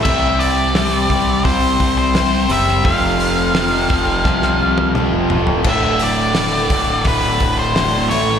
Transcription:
<<
  \new Staff \with { instrumentName = "Lead electric guitar" } { \time 4/4 \key c \lydian \tempo 4 = 86 e''8 d''4. c''8. c''8. e''8 | f''2. r4 | e''8 d''4. b'8. c''8. cis''8 | }
  \new Staff \with { instrumentName = "Twelve-string acoustic guitar" } { \time 4/4 \key c \lydian <c e g c' e' c''>8 <g c' e' c''>8 <c e g c' e' c''>8 <g c' e' c''>16 <g c' e' c''>8 <g c' e' c''>16 <g c' e' c''>8 <c e g c' e' c''>16 <g c' e' c''>16 <g c' e' c''>8 | <f a c' f' a'>8 <a c' f' a'>8 <f a c' f' a'>8 <a c' f' a'>16 <c' f' a'>8 <c' f' a'>16 <a c' f' a'>8 <f a c' f' a'>16 <c' f' a'>16 <a c' f' a'>8 | <d a d' fis' a'>8 <a d' fis' a'>8 <d a d' fis' a'>8 <a d' fis' a'>16 <d' fis' a'>8 <d' fis' a'>16 <a d' fis' a'>8 <d a d' fis' a'>16 <d' fis' a'>16 <a cis' e' a'>8 | }
  \new Staff \with { instrumentName = "Distorted electric guitar" } { \clef bass \time 4/4 \key c \lydian <c g c'>4 <c g c'>8 <c g c'>8 <c g c'>4 <c g c'>8 <c g c'>8 | <f, c f>4 <f, c f>8 <f, c f>8 <f, c f>4 <f, c f>8 <f, c f>8 | <d, a, d>4 <d, a, d>8 <d, a, d>8 <d, a, d>4 <d, a, d>8 <a, e a>8 | }
  \new Staff \with { instrumentName = "Overdriven electric guitar" } { \clef bass \time 4/4 \key c \lydian <c g c'>4 <c g c'>8 <c g c'>8 <c g c'>4 <c g c'>8 <c g c'>8 | <f, c f>4 <f, c f>8 <f, c f>8 <f, c f>4 <f, c f>8 <f, c f>8 | <d, a, d>4 <d, a, d>8 <d, a, d>8 <d, a, d>4 <d, a, d>8 <a, e a>8 | }
  \new Staff \with { instrumentName = "Fingered electric bass" } { \clef bass \time 4/4 \key c \lydian c,4. c,8 c,8 c,4 fis,,8 | f,,4. f,,8 c,8 c,8. f,,16 e,,16 d,,16 | d,,4. d,,8 d,,8 d,,4 a,,8 | }
  \new DrumStaff \with { instrumentName = "Drums" } \drummode { \time 4/4 <cymc bd>8 hho8 <hho sn>8 <hho bd>8 <hho bd>8 <hho bd>8 <hho sn>8 hho16 sn16 | <hho bd>8 hho8 <hho sn>8 <hho bd>8 <bd sn>16 sn8 tommh16 toml8 tomfh16 tomfh16 | <cymc bd>8 hho8 <hho sn>8 <hho bd>8 <hho bd>8 <hho bd>8 <hho sn>8 hho16 sn16 | }
>>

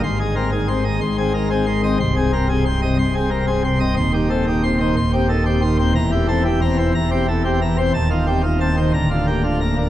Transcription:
<<
  \new Staff \with { instrumentName = "Pipe organ" } { \time 4/4 \key aes \lydian \tempo 4 = 121 << { c'''8 r2. r8 | c'''8 r2. r8 | \key c \dorian c'''8 r2. r8 | bes''8 r2. r8 |
a''8 r4. bes''8 r4. | } \\ { \tuplet 3/2 { aes,8 <ees aes'>8 <c' bes'>8 <ees aes'>8 <c' c'''>8 <ees ees''>8 <aes, c'''>8 <c' aes'>8 <ees bes'>8 <c' aes'>8 <ees c'''>8 <c' ees''>8 } | \tuplet 3/2 { c,8 <c aes'>8 <c' bes'>8 <c aes'>8 <c' c'''>8 <c ees''>8 <c, c'''>8 <c' aes'>8 <c bes'>8 <c' aes'>8 <c c'''>8 <c' ees''>8 } | \tuplet 3/2 { ees,8 <ees g'>8 <c' a'>8 <ees g'>8 <c' c'''>8 <ees c''>8 <ees, c'''>8 <c' g'>8 <ees a'>8 <c' g'>8 <ees c'''>8 <c' c''>8 } | \tuplet 3/2 { e,8 <e g'>8 <c' a'>8 <e g'>8 <c' bes''>8 <e c''>8 <e, bes''>8 <c' g'>8 <e a'>8 <c' g'>8 <e bes''>8 <c' c''>8 } |
\tuplet 3/2 { ees,8 <ees f'>8 <c' g'>8 <ees f'>8 <c' a''>8 <ees c''>8 d,8 <d f'>8 <bes g'>8 <d f'>8 <bes bes''>8 <d bes'>8 } | } >> }
  \new Staff \with { instrumentName = "Pipe organ" } { \clef bass \time 4/4 \key aes \lydian aes,,2 aes,,2 | c,,2 c,,2 | \key c \dorian ees,,2 ees,,2 | e,,2 e,,2 |
ees,,2 d,,2 | }
>>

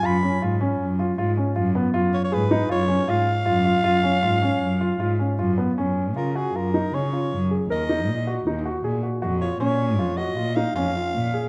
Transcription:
<<
  \new Staff \with { instrumentName = "Soprano saxophone" } { \time 5/4 \key fis \major \tempo 4 = 157 b''4 r1 | r8 cis''16 cis''16 b'4 cis''4 eis''2~ | eis''1 r4 | r4 ais'8 gis'8 ais'4 cis''4. r8 |
dis''2 r2 r8 cis''8 | cis''4. dis''4 eis''8 eis''2 | }
  \new Staff \with { instrumentName = "Grand piano" } { \time 5/4 \key fis \major eis'8 cis'8 eis'8 cis'4 eis'8 eis'8 cis'8 eis'8 b8 | eis'4 gis'8 dis'8 eis'8 cis'8 eis'4 eis'8 eis'8 | eis'8 cis'8 eis'8 cis'4 eis'8 eis'8 cis'8 eis'8 b8 | cis'4 eis'8 fis'8 eis'8 dis'8 cis'8 eis'4 gis'8 |
ais'8 dis'4 fis'8 dis'8 fis'8 gis'8 fis'8 fis'8 eis'8 | cis'4 eis'8 fis'8 eis'8 dis'8 cis'8 eis'4 gis'8 | }
  \new Staff \with { instrumentName = "Cello" } { \clef bass \time 5/4 \key fis \major fis,8 r8 gis,4 fis,4 gis,8 r8 fis,4 | fis,8 r8 gis,4 fis,4 gis,8 r8 fis,4 | fis,8 r8 gis,4 fis,4 gis,8 r8 fis,4 | fis,4 cis4 fis,4 cis8 r8 fis,4 |
dis,4 ais,4 dis,4 ais,8 r8 eis,4 | ais,4 eis,4 ais,4 eis,8 r8 ais,4 | }
>>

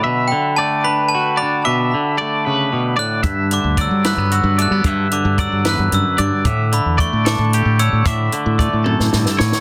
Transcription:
<<
  \new Staff \with { instrumentName = "Glockenspiel" } { \time 6/8 \key b \minor \tempo 4. = 75 b''8 g''8 a''8 b''8 a''8 b''8 | d'''2~ d'''8 fis'''8~ | fis'''8 d'''8 e'''8 fis'''8 e'''8 fis'''8~ | fis'''8 d'''8 e'''8 fis'''8 e'''8 d'''8~ |
d'''8 b''8 cis'''8 d'''4 e'''8 | d'''2 r4 | }
  \new Staff \with { instrumentName = "Clean electric guitar" } { \time 6/8 \key b \minor e''4 d''8 b'4 d''8 | e''4 d''8 b'4 d''8 | e''4 d''8 b'4 d''8 | e''4 d''8 b'4 d''8 |
e''4 d''8 a'4 cis''8 | e''4 d''8 a'4 cis''8 | }
  \new Staff \with { instrumentName = "Clean electric guitar" } { \clef bass \time 6/8 \key b \minor << { fis4 a8 d'8 fis'8 d'8 | r4 a2 | r4 fis8 a16 b16 fis'8 a16 b16 | r4 fis2 |
r4 a8 d'8 g'8 d'8 | r4 a2 | } \\ { <b, d>8 d2~ d8 | b,8 d4 cis8 b,8 a,8 | g,8 d2~ d8 | g,8 d4 e,8 fis,8 g,8 |
a,8 d2~ d8 | a,8 d4 fis,8 g,8 a,8 | } >> }
  \new Staff \with { instrumentName = "Fingered electric bass" } { \clef bass \time 6/8 \key b \minor r2. | r2. | g,8. d,8 g8 g,8 g,8 g16 | g,8 r16 g,8 g,8 g,16 g,16 r16 g,16 r16 |
a,8. e,8 a,8 a,8 a,8 a,16 | a,8 r16 a,8 a,8 a,16 a,16 r16 a,16 r16 | }
  \new DrumStaff \with { instrumentName = "Drums" } \drummode { \time 6/8 r4. r4. | r4. r4. | <hh bd>8 hh8 <hh bd>8 <hh sn>8 hh8 hh8 | <hh bd>8 hh8 <hh bd>8 <hh sn>8 hh8 hh8 |
<hh bd>8 hh8 <hh bd>8 <hh sn>8 hh8 hh8 | <hh bd>8 hh8 <hh bd>8 tommh16 sn16 sn16 sn16 sn16 sn16 | }
>>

